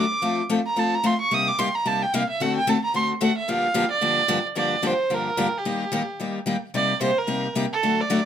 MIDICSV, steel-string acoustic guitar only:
0, 0, Header, 1, 2, 480
1, 0, Start_track
1, 0, Key_signature, -2, "minor"
1, 0, Tempo, 271493
1, 403, Time_signature, 4, 2, 24, 8
1, 14588, End_track
2, 0, Start_track
2, 0, Title_t, "Steel-string acoustic guitar"
2, 0, Program_c, 0, 25
2, 383, Note_on_c, 0, 53, 62
2, 390, Note_on_c, 0, 57, 71
2, 395, Note_on_c, 0, 60, 71
2, 397, Note_on_c, 0, 69, 73
2, 399, Note_on_c, 0, 65, 76
2, 718, Note_off_c, 0, 53, 0
2, 722, Note_off_c, 0, 57, 0
2, 724, Note_off_c, 0, 60, 0
2, 725, Note_off_c, 0, 69, 0
2, 726, Note_off_c, 0, 65, 0
2, 874, Note_on_c, 0, 53, 87
2, 877, Note_on_c, 0, 57, 84
2, 882, Note_on_c, 0, 65, 96
2, 885, Note_on_c, 0, 60, 88
2, 892, Note_on_c, 0, 69, 92
2, 1038, Note_off_c, 0, 53, 0
2, 1040, Note_off_c, 0, 57, 0
2, 1042, Note_off_c, 0, 65, 0
2, 1044, Note_off_c, 0, 60, 0
2, 1047, Note_off_c, 0, 69, 0
2, 1345, Note_on_c, 0, 53, 61
2, 1353, Note_on_c, 0, 57, 68
2, 1356, Note_on_c, 0, 60, 61
2, 1359, Note_on_c, 0, 65, 65
2, 1363, Note_on_c, 0, 69, 69
2, 1679, Note_off_c, 0, 53, 0
2, 1682, Note_off_c, 0, 57, 0
2, 1684, Note_off_c, 0, 60, 0
2, 1686, Note_off_c, 0, 65, 0
2, 1688, Note_off_c, 0, 69, 0
2, 1827, Note_on_c, 0, 53, 77
2, 1832, Note_on_c, 0, 57, 92
2, 1834, Note_on_c, 0, 60, 93
2, 1838, Note_on_c, 0, 69, 95
2, 1844, Note_on_c, 0, 65, 102
2, 1994, Note_off_c, 0, 53, 0
2, 1996, Note_off_c, 0, 57, 0
2, 1997, Note_off_c, 0, 60, 0
2, 2000, Note_off_c, 0, 69, 0
2, 2002, Note_off_c, 0, 65, 0
2, 2319, Note_on_c, 0, 48, 74
2, 2322, Note_on_c, 0, 55, 65
2, 2324, Note_on_c, 0, 58, 71
2, 2324, Note_on_c, 0, 63, 74
2, 2332, Note_on_c, 0, 67, 71
2, 2645, Note_off_c, 0, 48, 0
2, 2647, Note_off_c, 0, 55, 0
2, 2647, Note_off_c, 0, 63, 0
2, 2648, Note_off_c, 0, 58, 0
2, 2652, Note_off_c, 0, 67, 0
2, 2802, Note_on_c, 0, 55, 96
2, 2804, Note_on_c, 0, 48, 86
2, 2808, Note_on_c, 0, 58, 94
2, 2812, Note_on_c, 0, 63, 83
2, 2818, Note_on_c, 0, 67, 107
2, 2961, Note_off_c, 0, 55, 0
2, 2962, Note_off_c, 0, 48, 0
2, 2964, Note_off_c, 0, 58, 0
2, 2966, Note_off_c, 0, 63, 0
2, 2969, Note_off_c, 0, 67, 0
2, 3276, Note_on_c, 0, 48, 60
2, 3281, Note_on_c, 0, 55, 64
2, 3282, Note_on_c, 0, 58, 67
2, 3291, Note_on_c, 0, 67, 68
2, 3293, Note_on_c, 0, 63, 68
2, 3603, Note_off_c, 0, 48, 0
2, 3606, Note_off_c, 0, 55, 0
2, 3606, Note_off_c, 0, 58, 0
2, 3611, Note_off_c, 0, 63, 0
2, 3611, Note_off_c, 0, 67, 0
2, 3777, Note_on_c, 0, 48, 81
2, 3779, Note_on_c, 0, 55, 96
2, 3780, Note_on_c, 0, 63, 92
2, 3784, Note_on_c, 0, 58, 109
2, 3789, Note_on_c, 0, 67, 102
2, 3928, Note_off_c, 0, 48, 0
2, 3929, Note_off_c, 0, 55, 0
2, 3929, Note_off_c, 0, 63, 0
2, 3932, Note_off_c, 0, 58, 0
2, 3934, Note_off_c, 0, 67, 0
2, 4247, Note_on_c, 0, 50, 73
2, 4258, Note_on_c, 0, 57, 74
2, 4263, Note_on_c, 0, 66, 80
2, 4264, Note_on_c, 0, 60, 72
2, 4264, Note_on_c, 0, 69, 78
2, 4568, Note_off_c, 0, 50, 0
2, 4574, Note_off_c, 0, 57, 0
2, 4576, Note_off_c, 0, 60, 0
2, 4576, Note_off_c, 0, 66, 0
2, 4577, Note_off_c, 0, 69, 0
2, 4723, Note_on_c, 0, 50, 105
2, 4725, Note_on_c, 0, 60, 100
2, 4726, Note_on_c, 0, 57, 96
2, 4730, Note_on_c, 0, 66, 101
2, 4730, Note_on_c, 0, 69, 96
2, 4880, Note_off_c, 0, 50, 0
2, 4881, Note_off_c, 0, 60, 0
2, 4882, Note_off_c, 0, 57, 0
2, 4884, Note_off_c, 0, 66, 0
2, 4884, Note_off_c, 0, 69, 0
2, 5194, Note_on_c, 0, 50, 62
2, 5200, Note_on_c, 0, 60, 66
2, 5204, Note_on_c, 0, 57, 62
2, 5211, Note_on_c, 0, 66, 60
2, 5211, Note_on_c, 0, 69, 69
2, 5521, Note_off_c, 0, 50, 0
2, 5524, Note_off_c, 0, 60, 0
2, 5526, Note_off_c, 0, 57, 0
2, 5529, Note_off_c, 0, 66, 0
2, 5530, Note_off_c, 0, 69, 0
2, 5668, Note_on_c, 0, 50, 80
2, 5673, Note_on_c, 0, 60, 93
2, 5677, Note_on_c, 0, 57, 98
2, 5683, Note_on_c, 0, 66, 104
2, 5685, Note_on_c, 0, 69, 99
2, 5832, Note_off_c, 0, 50, 0
2, 5835, Note_off_c, 0, 60, 0
2, 5837, Note_off_c, 0, 57, 0
2, 5840, Note_off_c, 0, 66, 0
2, 5841, Note_off_c, 0, 69, 0
2, 6149, Note_on_c, 0, 43, 67
2, 6156, Note_on_c, 0, 50, 77
2, 6164, Note_on_c, 0, 53, 79
2, 6165, Note_on_c, 0, 58, 83
2, 6166, Note_on_c, 0, 62, 76
2, 6167, Note_on_c, 0, 67, 73
2, 6478, Note_off_c, 0, 43, 0
2, 6482, Note_off_c, 0, 50, 0
2, 6486, Note_off_c, 0, 53, 0
2, 6486, Note_off_c, 0, 58, 0
2, 6487, Note_off_c, 0, 62, 0
2, 6487, Note_off_c, 0, 67, 0
2, 6616, Note_on_c, 0, 43, 94
2, 6617, Note_on_c, 0, 50, 96
2, 6625, Note_on_c, 0, 53, 107
2, 6627, Note_on_c, 0, 58, 101
2, 6627, Note_on_c, 0, 62, 105
2, 6631, Note_on_c, 0, 67, 114
2, 6786, Note_off_c, 0, 43, 0
2, 6787, Note_off_c, 0, 50, 0
2, 6791, Note_off_c, 0, 53, 0
2, 6791, Note_off_c, 0, 58, 0
2, 6791, Note_off_c, 0, 62, 0
2, 6793, Note_off_c, 0, 67, 0
2, 7091, Note_on_c, 0, 43, 66
2, 7095, Note_on_c, 0, 50, 65
2, 7103, Note_on_c, 0, 53, 74
2, 7103, Note_on_c, 0, 58, 67
2, 7105, Note_on_c, 0, 62, 64
2, 7112, Note_on_c, 0, 67, 82
2, 7429, Note_off_c, 0, 43, 0
2, 7431, Note_off_c, 0, 50, 0
2, 7435, Note_off_c, 0, 53, 0
2, 7435, Note_off_c, 0, 58, 0
2, 7436, Note_off_c, 0, 62, 0
2, 7439, Note_off_c, 0, 67, 0
2, 7571, Note_on_c, 0, 53, 94
2, 7572, Note_on_c, 0, 50, 91
2, 7576, Note_on_c, 0, 43, 94
2, 7578, Note_on_c, 0, 58, 91
2, 7580, Note_on_c, 0, 62, 99
2, 7583, Note_on_c, 0, 67, 104
2, 7743, Note_off_c, 0, 53, 0
2, 7744, Note_off_c, 0, 50, 0
2, 7745, Note_off_c, 0, 43, 0
2, 7747, Note_off_c, 0, 58, 0
2, 7748, Note_off_c, 0, 62, 0
2, 7749, Note_off_c, 0, 67, 0
2, 8050, Note_on_c, 0, 43, 64
2, 8058, Note_on_c, 0, 58, 73
2, 8063, Note_on_c, 0, 62, 84
2, 8064, Note_on_c, 0, 50, 68
2, 8069, Note_on_c, 0, 53, 65
2, 8073, Note_on_c, 0, 67, 73
2, 8388, Note_off_c, 0, 43, 0
2, 8392, Note_off_c, 0, 58, 0
2, 8395, Note_off_c, 0, 50, 0
2, 8395, Note_off_c, 0, 62, 0
2, 8398, Note_off_c, 0, 53, 0
2, 8400, Note_off_c, 0, 67, 0
2, 8527, Note_on_c, 0, 43, 72
2, 8535, Note_on_c, 0, 50, 76
2, 8535, Note_on_c, 0, 53, 89
2, 8540, Note_on_c, 0, 58, 85
2, 8540, Note_on_c, 0, 62, 86
2, 8545, Note_on_c, 0, 67, 97
2, 8701, Note_off_c, 0, 43, 0
2, 8705, Note_off_c, 0, 50, 0
2, 8705, Note_off_c, 0, 53, 0
2, 8708, Note_off_c, 0, 58, 0
2, 8708, Note_off_c, 0, 62, 0
2, 8710, Note_off_c, 0, 67, 0
2, 9017, Note_on_c, 0, 50, 63
2, 9018, Note_on_c, 0, 43, 48
2, 9021, Note_on_c, 0, 53, 57
2, 9027, Note_on_c, 0, 58, 56
2, 9029, Note_on_c, 0, 62, 62
2, 9033, Note_on_c, 0, 67, 70
2, 9352, Note_off_c, 0, 50, 0
2, 9353, Note_off_c, 0, 43, 0
2, 9354, Note_off_c, 0, 53, 0
2, 9357, Note_off_c, 0, 58, 0
2, 9358, Note_off_c, 0, 62, 0
2, 9360, Note_off_c, 0, 67, 0
2, 9499, Note_on_c, 0, 43, 92
2, 9500, Note_on_c, 0, 53, 83
2, 9503, Note_on_c, 0, 50, 77
2, 9507, Note_on_c, 0, 58, 93
2, 9513, Note_on_c, 0, 62, 94
2, 9515, Note_on_c, 0, 67, 97
2, 9668, Note_off_c, 0, 43, 0
2, 9668, Note_off_c, 0, 53, 0
2, 9670, Note_off_c, 0, 50, 0
2, 9671, Note_off_c, 0, 58, 0
2, 9674, Note_off_c, 0, 62, 0
2, 9676, Note_off_c, 0, 67, 0
2, 9993, Note_on_c, 0, 51, 61
2, 9995, Note_on_c, 0, 55, 70
2, 10004, Note_on_c, 0, 63, 73
2, 10004, Note_on_c, 0, 67, 69
2, 10005, Note_on_c, 0, 58, 72
2, 10321, Note_off_c, 0, 51, 0
2, 10322, Note_off_c, 0, 55, 0
2, 10326, Note_off_c, 0, 63, 0
2, 10326, Note_off_c, 0, 67, 0
2, 10327, Note_off_c, 0, 58, 0
2, 10460, Note_on_c, 0, 51, 92
2, 10471, Note_on_c, 0, 55, 83
2, 10477, Note_on_c, 0, 58, 102
2, 10477, Note_on_c, 0, 63, 83
2, 10480, Note_on_c, 0, 67, 94
2, 10629, Note_off_c, 0, 51, 0
2, 10634, Note_off_c, 0, 55, 0
2, 10637, Note_off_c, 0, 58, 0
2, 10637, Note_off_c, 0, 63, 0
2, 10638, Note_off_c, 0, 67, 0
2, 10954, Note_on_c, 0, 51, 57
2, 10969, Note_on_c, 0, 55, 64
2, 10969, Note_on_c, 0, 58, 62
2, 10975, Note_on_c, 0, 67, 63
2, 10978, Note_on_c, 0, 63, 62
2, 11281, Note_off_c, 0, 51, 0
2, 11289, Note_off_c, 0, 55, 0
2, 11289, Note_off_c, 0, 58, 0
2, 11292, Note_off_c, 0, 67, 0
2, 11293, Note_off_c, 0, 63, 0
2, 11418, Note_on_c, 0, 51, 79
2, 11433, Note_on_c, 0, 55, 84
2, 11433, Note_on_c, 0, 63, 83
2, 11436, Note_on_c, 0, 58, 83
2, 11438, Note_on_c, 0, 67, 88
2, 11588, Note_off_c, 0, 51, 0
2, 11595, Note_off_c, 0, 55, 0
2, 11595, Note_off_c, 0, 63, 0
2, 11597, Note_off_c, 0, 58, 0
2, 11598, Note_off_c, 0, 67, 0
2, 11916, Note_on_c, 0, 48, 71
2, 11919, Note_on_c, 0, 55, 68
2, 11926, Note_on_c, 0, 58, 69
2, 11931, Note_on_c, 0, 67, 72
2, 11935, Note_on_c, 0, 63, 70
2, 12243, Note_off_c, 0, 48, 0
2, 12244, Note_off_c, 0, 55, 0
2, 12248, Note_off_c, 0, 58, 0
2, 12250, Note_off_c, 0, 67, 0
2, 12252, Note_off_c, 0, 63, 0
2, 12385, Note_on_c, 0, 48, 87
2, 12389, Note_on_c, 0, 55, 103
2, 12397, Note_on_c, 0, 63, 90
2, 12398, Note_on_c, 0, 58, 96
2, 12401, Note_on_c, 0, 67, 90
2, 12552, Note_off_c, 0, 48, 0
2, 12554, Note_off_c, 0, 55, 0
2, 12558, Note_off_c, 0, 58, 0
2, 12558, Note_off_c, 0, 63, 0
2, 12560, Note_off_c, 0, 67, 0
2, 12855, Note_on_c, 0, 55, 55
2, 12860, Note_on_c, 0, 48, 59
2, 12866, Note_on_c, 0, 58, 64
2, 12867, Note_on_c, 0, 63, 68
2, 12874, Note_on_c, 0, 67, 69
2, 13193, Note_off_c, 0, 55, 0
2, 13195, Note_off_c, 0, 48, 0
2, 13199, Note_off_c, 0, 58, 0
2, 13199, Note_off_c, 0, 63, 0
2, 13203, Note_off_c, 0, 67, 0
2, 13354, Note_on_c, 0, 48, 81
2, 13361, Note_on_c, 0, 55, 83
2, 13361, Note_on_c, 0, 58, 86
2, 13363, Note_on_c, 0, 63, 87
2, 13373, Note_on_c, 0, 67, 97
2, 13517, Note_off_c, 0, 48, 0
2, 13520, Note_off_c, 0, 55, 0
2, 13520, Note_off_c, 0, 58, 0
2, 13521, Note_off_c, 0, 63, 0
2, 13526, Note_off_c, 0, 67, 0
2, 13842, Note_on_c, 0, 50, 66
2, 13848, Note_on_c, 0, 54, 74
2, 13852, Note_on_c, 0, 57, 77
2, 13852, Note_on_c, 0, 62, 69
2, 13858, Note_on_c, 0, 66, 66
2, 14167, Note_off_c, 0, 50, 0
2, 14170, Note_off_c, 0, 54, 0
2, 14172, Note_off_c, 0, 57, 0
2, 14172, Note_off_c, 0, 62, 0
2, 14175, Note_off_c, 0, 66, 0
2, 14316, Note_on_c, 0, 50, 80
2, 14320, Note_on_c, 0, 54, 87
2, 14325, Note_on_c, 0, 57, 100
2, 14331, Note_on_c, 0, 62, 98
2, 14332, Note_on_c, 0, 66, 88
2, 14478, Note_off_c, 0, 50, 0
2, 14480, Note_off_c, 0, 54, 0
2, 14483, Note_off_c, 0, 57, 0
2, 14486, Note_off_c, 0, 62, 0
2, 14486, Note_off_c, 0, 66, 0
2, 14588, End_track
0, 0, End_of_file